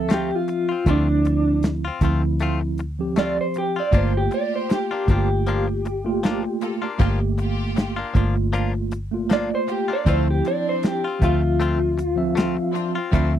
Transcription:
Already playing: fingered electric bass D2, tine electric piano F3 C4 E5, clean electric guitar A4
0.09 clean electric guitar A3 C4 F4, snare, closed hi-hat
0.14 clean electric guitar G4
0.31 muted clean electric guitar stroke
0.35 clean electric guitar F4
0.48 muted clean electric guitar stroke, closed hi-hat
0.69 clean electric guitar C4 F4
0.86 fingered electric bass D2, tine electric piano F3 C4 E4, clean electric guitar A3 C4 F4, kick, closed hi-hat
0.90 clean electric guitar D4
1.09 muted clean electric guitar stroke
1.25 muted clean electric guitar stroke, closed hi-hat
1.63 muted clean electric guitar stroke, snare, closed hi-hat
1.85 clean electric guitar C4 F4
2.01 fingered electric bass D2, tine electric piano F3 C4 E4, clean electric guitar A3 C4 F4, kick, closed hi-hat
2.23 muted clean electric guitar stroke
2.39 clean electric guitar A3 C4 F4, closed hi-hat
2.61 muted clean electric guitar stroke
2.78 muted clean electric guitar stroke, closed hi-hat
2.99 tine electric piano F3 C4 G4
3.16 clean electric guitar A3 C4 F4 D5, snare, closed hi-hat
3.39 clean electric guitar C5, muted clean electric guitar stroke
3.54 muted clean electric guitar stroke, closed hi-hat
3.58 clean electric guitar G4
3.76 clean electric guitar C4 F4 D5
3.91 fingered electric bass G1, clean electric guitar F3 A#3 D4 F4, tine electric piano A3 A#3 F4, string section A#3 F4 G4, kick, closed hi-hat
3.97 clean electric guitar C5
4.14 clean electric guitar G4, muted clean electric guitar stroke
4.30 string section F4 G4, muted clean electric guitar stroke, closed hi-hat
4.34 clean electric guitar D5
4.56 clean electric guitar C5
4.70 clean electric guitar G4, muted clean electric guitar stroke, snare, closed hi-hat
4.91 clean electric guitar A#3 D4 F4
5.07 fingered electric bass G1, clean electric guitar F3 A#3 D4, tine electric piano A3 A#3 F4, kick, closed hi-hat
5.11 clean electric guitar F4 G4
5.30 muted clean electric guitar stroke
5.47 clean electric guitar F3 A#3 D4 F4, closed hi-hat
5.68 muted clean electric guitar stroke
5.85 muted clean electric guitar stroke, closed hi-hat
6.04 tine electric piano A3 A#3 F4
6.23 clean electric guitar F3 A#3 D4 F4, snare, closed hi-hat
6.44 muted clean electric guitar stroke
6.61 string section A#3 F4 A4, muted clean electric guitar stroke, closed hi-hat
6.82 clean electric guitar A#3 D4 F4
6.98 fingered electric bass G1, clean electric guitar F3 A#3 D4 F4, tine electric piano A3 A#3 G4, string section A#3 F4 G4, kick, closed hi-hat
7.20 muted clean electric guitar stroke
7.38 string section F4 G4, muted clean electric guitar stroke, closed hi-hat
7.76 muted clean electric guitar stroke, snare, closed hi-hat
7.96 clean electric guitar A#3 D4 F4
8.14 fingered electric bass G1, clean electric guitar F3 A#3 D4 F4, tine electric piano A3 A#3 F4, kick, closed hi-hat
8.36 muted clean electric guitar stroke
8.53 clean electric guitar F3 A#3 D4 F4, closed hi-hat
8.73 muted clean electric guitar stroke
8.91 muted clean electric guitar stroke, closed hi-hat
9.11 tine electric piano A3 A#3 F4
9.30 clean electric guitar F3 A#3 D4 F4 D5, snare, closed hi-hat
9.51 muted clean electric guitar stroke
9.55 clean electric guitar C5
9.66 string section A#3 F4 G4, muted clean electric guitar stroke, closed hi-hat
9.72 clean electric guitar G4
9.88 clean electric guitar A#3 D4 F4
9.93 clean electric guitar D5
10.05 fingered electric bass D2, tine electric piano F3 C4 E4, clean electric guitar A3 C4 F4, string section C4 D4 F4, kick, closed hi-hat
10.09 clean electric guitar C5
10.28 clean electric guitar G4, muted clean electric guitar stroke
10.44 string section C4 D4, clean electric guitar D5, muted clean electric guitar stroke, closed hi-hat
10.69 clean electric guitar C5
10.83 muted clean electric guitar stroke, snare, closed hi-hat
10.87 clean electric guitar G4
11.04 clean electric guitar C4 F4
11.20 fingered electric bass D2, tine electric piano F3 C4 E5, clean electric guitar A3 C4, kick, closed hi-hat
11.24 clean electric guitar F4
11.42 muted clean electric guitar stroke
11.60 clean electric guitar A3 C4 F4, closed hi-hat
11.79 muted clean electric guitar stroke
11.98 muted clean electric guitar stroke, closed hi-hat
12.16 tine electric piano F3 C4 E5
12.35 clean electric guitar A3 C4 F4, snare, closed hi-hat
12.57 muted clean electric guitar stroke
12.72 string section C4 D4 F4, muted clean electric guitar stroke, closed hi-hat
12.95 clean electric guitar C4 F4
13.11 fingered electric bass D2, tine electric piano F3 C4 E5, clean electric guitar A3 C4 F4, string section C4 D4 E4, kick, closed hi-hat
13.35 muted clean electric guitar stroke

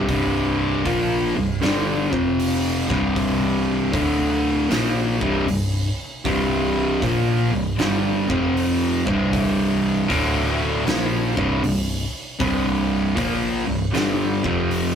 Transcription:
0.08 picked electric bass C1, distorted electric guitar C2 G2 C3, kick, open hi-hat
0.85 picked electric bass A#1, distorted electric guitar A#2 F3 A#3, kick, open hi-hat
1.36 picked electric bass C1, distorted electric guitar C2 G2
1.62 picked electric bass G1, distorted electric guitar G2 D3 G3, snare, open hi-hat
2.12 picked electric bass F1, distorted electric guitar F2 C3 F3, kick
2.39 open hi-hat
2.89 picked electric bass C1, distorted electric guitar C2 G2 C3, kick, snare
3.16 kick, open hi-hat
3.93 picked electric bass D1, distorted electric guitar D2 A2 D3, kick, open hi-hat
4.70 picked electric bass A#1, distorted electric guitar A#2 F3 A#3, snare, open hi-hat
5.21 picked electric bass C1, distorted electric guitar C2 G2 C3, kick
5.48 picked electric bass C1, distorted electric guitar C2 G2, open hi-hat
6.25 picked electric bass C1, distorted electric guitar C2 G2 C3, kick, open hi-hat
7.02 picked electric bass A#1, distorted electric guitar A#2 F3 A#3, kick, open hi-hat
7.52 picked electric bass C1, distorted electric guitar C2 G2
7.78 picked electric bass G1, distorted electric guitar G2 D3 G3, snare, open hi-hat
8.28 picked electric bass F1, distorted electric guitar F2 C3 F3, kick
8.57 open hi-hat
9.05 picked electric bass C1, distorted electric guitar C2 G2 C3, kick
9.33 kick, open hi-hat
10.08 picked electric bass D1, distorted electric guitar D2 A2 D3, kick, open hi-hat
10.85 picked electric bass A#1, distorted electric guitar A#2 F3 A#3, snare, open hi-hat
11.36 picked electric bass C1, distorted electric guitar C2 G2 C3, kick
11.63 picked electric bass C1, distorted electric guitar C2 G2, open hi-hat
12.39 picked electric bass C1, distorted electric guitar C2 G2 C3, kick, open hi-hat
13.16 picked electric bass A#1, distorted electric guitar A#2 F3 A#3, kick, open hi-hat
13.67 picked electric bass C1, distorted electric guitar C2 G2
13.93 picked electric bass G1, distorted electric guitar G2 D3 G3, snare, open hi-hat
14.43 picked electric bass F1, distorted electric guitar F2 C3 F3, kick
14.71 open hi-hat

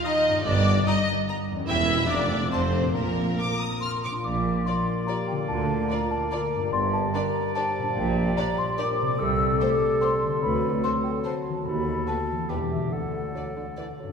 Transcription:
Already playing: harp D#3 D#4 G4 A#4
0.04 viola section D#4, violin section D#5 A#5, celesta D#6
0.29 harp G2
0.33 harp D#4
0.38 harp G4
0.42 cello section G2, harp A#4, violin section D5, celesta D6
0.46 double bass section G1, tuba G1, viola section D4
0.87 viola section D#4, violin section D#5 A#5, celesta D#6
1.28 violin section A#5
1.51 harp E2
1.56 harp C#4
1.60 harp G4
1.64 harp A#4
1.69 double bass section E1, tuba E1, cello section E2, viola section E4, violin section E5 G5, celesta E6
1.92 harp F2
1.97 harp A#3
2.01 harp F4
2.06 double bass section F1, harp A#4
2.10 tuba F1, cello section F2, viola section D4, violin section D5 A#5, celesta D6
2.34 harp F2
2.38 harp C4
2.43 harp F4
2.47 double bass section F1, harp A4
2.52 tuba F1, cello section F2, viola section C4, violin section C5 A5, celesta C6
2.77 harp A#2
2.82 harp D4
2.86 harp F4
2.91 double bass section A#1, harp A#4
2.95 tuba A#1, cello section A#2, viola section A#3, violin section A#4, celesta A#5
3.38 violin section D6
3.60 celesta A#5, flute A#5, violin section D#6
3.81 celesta C6, flute C6, violin section F6
4.04 harp A#2, violin section D6
4.11 harp D4
4.16 harp F4
4.20 harp A#4
4.25 double bass section A#1, tuba A#1, cello section A#2, bassoon A#3, french horn section D4, clarinet D5, celesta D6, flute D6
4.66 viola section F4, french horn section F4, violin section A#4 D5, celesta C6, flute C6
5.07 viola section F4, french horn section G4, violin section A#4 D5, celesta A#5, flute A#5
5.28 harp D3, celesta G5, flute G5
5.36 harp D4
5.40 harp F4
5.45 double bass section D2, french horn section F4, harp A#4, flute A5, celesta A5
5.49 tuba D2, cello section D3
5.90 viola section F4, violin section A#4 D5, flute A#5
6.11 celesta A5, flute A5
6.31 viola section F4, french horn section A#4, violin section A#4 D5, flute A#5
6.55 harp G2
6.59 harp D4
6.64 harp G4
6.68 french horn section G4, harp A#4
6.73 double bass section G1, tuba G1, cello section G2, bassoon G3, clarinet D5, celesta C6, flute C6
6.93 flute A5, celesta A5
7.14 viola section D4, violin section G4 D5, french horn section A#4, flute A#5, celesta A#5
7.55 viola section D4, violin section G4 D5, french horn section C5, flute A5, celesta A5
7.78 harp A#2
7.83 harp D4
7.87 harp G4
7.92 harp A#4
7.96 tuba A#1, double bass section A#1, cello section A#2, celesta G5, flute G5
8.37 viola section D4, violin section G4 D5, celesta A#5, flute A#5
8.58 flute C6, celesta C6
8.78 viola section D4, violin section G4 D5, french horn section A#4, flute D6, celesta D6
9.01 harp C3
9.06 harp C4
9.10 harp G4
9.15 harp A4
9.19 double bass section C2, tuba C2, cello section C3, bassoon G3, french horn section A4, clarinet A4, flute E6, celesta E6
9.60 viola section A3, violin section G4 C5, flute D6, celesta D6
10.01 viola section A3, violin section G4 C5, flute C6, celesta C6
10.24 harp D3
10.29 harp C4
10.34 harp F#4
10.38 harp A4
10.42 double bass section D2, cello section D2, tuba D2, bassoon F#3, french horn section B4, flute B5, celesta B5
10.84 viola section A3, violin section F#4 C5, french horn section A4, flute C6, celesta C6
11.04 celesta G5, flute G5
11.24 viola section A3, violin section F#4 C5, french horn section F#4, flute A5, celesta A5
11.49 harp D#3
11.53 harp B3
11.58 harp F#4
11.62 double bass section D#2, cello section D#2, french horn section F#4, harp A4, flute B5, celesta B5
11.67 tuba D#2, clarinet A4
12.07 viola section A3, violin section F#4 B4, flute A5, celesta A5
12.32 harp E3
12.36 harp B3
12.41 harp E4
12.45 cello section E2, harp G4, french horn section G4, flute G5
12.49 double bass section E1, tuba E1, bassoon E3, viola section G3, violin section G4 B4, clarinet G4, celesta G5
12.70 flute E5, celesta E5
12.75 harp D3
12.80 harp D4
12.84 harp A4
12.92 double bass section D2, cello section D2, tuba D2, bassoon D3, french horn section A4, clarinet A4, flute F#5, celesta F#5
13.34 bassoon F#3, viola section A3, violin section D4 D5
13.56 bassoon D3
13.78 bassoon E3, viola section A3, violin section D4 D5
13.99 bassoon F#3
14.04 harp G2
14.08 harp D4

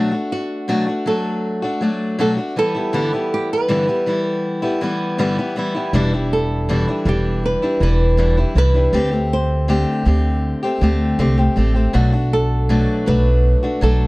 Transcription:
Already playing: steel-string acoustic guitar B2 F#3 A3 D4 F#4
0.12 steel-string acoustic guitar A3 D4 F#4
0.32 nylon-string guitar F#4
0.68 steel-string acoustic guitar B2 F#3 A3 D4 F#4
0.86 steel-string acoustic guitar A3 D4 F#4
1.06 steel-string acoustic guitar F#3 A3 D4 F#4, nylon-string guitar A4
1.62 steel-string acoustic guitar A3 D4 F#4
1.81 steel-string acoustic guitar F#3 A3 D4 F#4
2.19 steel-string acoustic guitar B2 F#3 A3 D4 F#4, nylon-string guitar A4
2.37 steel-string acoustic guitar A3 D4 F#4
2.56 steel-string acoustic guitar E3 G3 B3 E4, nylon-string guitar A4
2.75 steel-string acoustic guitar E3 G3 B3 E4
2.93 steel-string acoustic guitar G2 D3 E3 G3 B3 E4
3.13 steel-string acoustic guitar E3 G3 B3 E4
3.34 nylon-string guitar G4
3.53 nylon-string guitar B4
3.68 steel-string acoustic guitar G2 D3 E3 G3 B3 E4
3.87 steel-string acoustic guitar E3 G3 B3 E4
4.06 steel-string acoustic guitar E3 G3 B3 E4
4.27 nylon-string guitar A4
4.62 steel-string acoustic guitar E3 G3 B3 E4
4.81 steel-string acoustic guitar E3 G3 B3 E4
5.18 steel-string acoustic guitar G2 D3 E3 G3 B3 E4
5.38 steel-string acoustic guitar E3 G3 B3 E4
5.56 steel-string acoustic guitar E3 G3 B3 E4
5.74 steel-string acoustic guitar E3 G3 B3 E4
5.93 upright bass E1, steel-string acoustic guitar E2 B2 E3 G3 D4 E4
6.13 steel-string acoustic guitar E3 G3 D4 E4
6.33 nylon-string guitar A4
6.69 steel-string acoustic guitar E2 B2 E3 G3 D4 E4
6.87 steel-string acoustic guitar E3 G3 D4 E4
7.05 upright bass E1, steel-string acoustic guitar E3 G3 D4 E4, nylon-string guitar G4
7.46 nylon-string guitar B4
7.62 steel-string acoustic guitar E3 G3 D4 E4
7.80 upright bass E1, steel-string acoustic guitar E3 G3 D4 E4, nylon-string guitar B4
8.17 steel-string acoustic guitar E2 B2 E3 G3 D4 E4
8.37 steel-string acoustic guitar E3 G3 D4 E4
8.55 upright bass C2, steel-string acoustic guitar E3 G3 D4 E4, nylon-string guitar B4
8.74 steel-string acoustic guitar E3 G3 D4 E4
8.93 upright bass D2, steel-string acoustic guitar D3 A3 C4 G4
9.11 steel-string acoustic guitar A3 C4 G4
9.33 nylon-string guitar C5
9.68 steel-string acoustic guitar D3 A3 C4 G4
10.05 upright bass D2, steel-string acoustic guitar D3 A3 C4 G4
10.63 steel-string acoustic guitar A3 C4 G4
10.81 upright bass D2, steel-string acoustic guitar D3 A3 C4 G4
11.19 upright bass C2, steel-string acoustic guitar D3 A3 C4 G4
11.38 steel-string acoustic guitar A3 C4 G4
11.56 upright bass A1, steel-string acoustic guitar D3 A3 C4 G4
11.74 steel-string acoustic guitar A3 C4 G4
11.93 upright bass B1, steel-string acoustic guitar B2 F#3 A3 D4 F#4
12.12 steel-string acoustic guitar A3 D4 F#4
12.33 nylon-string guitar A4
12.69 steel-string acoustic guitar B2 F#3 A3 D4 F#4
13.06 upright bass B1, steel-string acoustic guitar F#3 A3 D4 F#4, nylon-string guitar B4
13.63 steel-string acoustic guitar A3 D4 F#4
13.81 upright bass B1, steel-string acoustic guitar F#3 A3 D4 F#4, nylon-string guitar A4

